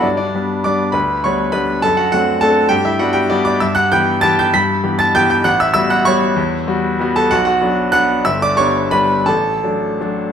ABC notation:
X:1
M:3/4
L:1/8
Q:1/4=196
K:Glyd
V:1 name="Grand piano"
[Dd] [Dd]3 [dd']2 | [Bb]2 [cc']2 [Bb]2 | [Aa] [Ff] [Ff]2 [Aa]2 | [Gg] [Ee] [Ff] [Gg] [Dd] [dd'] |
[K:Edor] [ee'] [ff'] [gg']2 [aa'] [gg'] | [bb']3 [aa'] [gg'] [gg'] | [ff'] [ee'] [ee'] [ff'] [cc']2- | [cc']4 z [Aa] |
[Ff] [Ff]3 [ff']2 | [ee'] [dd'] [cc']2 [Bb]2 | [Aa]6 |]
V:2 name="Grand piano"
G,,2 [G,B,D]2 [G,B,D]2 | D,,2 [G,B,D]2 [G,B,D]2 | F,,2 [A,=CD]2 [A,CD]2 | G,,2 [G,B,D]2 [G,B,]2 |
[K:Edor] G,,2 [E,B,G]2 [E,B,G]2 | G,,2 [E,B,G]2 [E,B,G]2 | A,,,2 [G,B,F]2 [G,B,F]2 | E,,2 [G,B,F]2 [G,B,F]2 |
B,,,2 [F,B,D]2 [F,B,D]2 | G,,,2 [G,B,D]2 [G,B,D]2 | A,,,2 [F,A,D]2 [F,A,D]2 |]